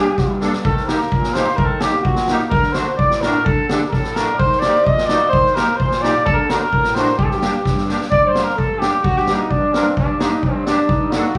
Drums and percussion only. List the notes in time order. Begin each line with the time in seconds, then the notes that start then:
0.17 kick, snare
0.41 snare
0.53 snare
0.65 kick
0.77 snare
0.89 snare
1.00 snare
1.12 kick
1.24 snare
1.35 snare
1.47 snare
1.58 kick
1.80 snare
1.93 snare
2.05 kick
2.16 snare
2.28 snare
2.39 snare
2.51 kick
2.63 snare
2.74 snare
2.99 kick
3.11 snare
3.22 snare
3.46 kick
3.69 snare
3.93 kick, snare
4.04 snare
4.16 snare
4.39 kick
4.52 snare
4.62 snare
4.74 snare
4.86 kick
4.98 snare
5.09 snare
5.33 kick
5.46 snare
5.57 snare
5.80 kick
5.92 snare
6.04 snare
6.26 kick
6.50 snare
6.73 kick
6.84 snare
6.96 snare
7.07 snare
7.19 kick
7.31 snare
7.42 snare
7.65 kick, snare
7.78 snare
7.89 snare
8.01 snare
8.12 kick
8.35 snare
8.48 snare
8.58 kick
8.82 snare
9.04 kick
9.16 snare
9.27 snare
9.51 kick
9.74 snare
9.97 kick
10.20 snare
10.32 snare
10.43 kick
10.67 snare
10.89 kick
11.12 snare
11.35 kick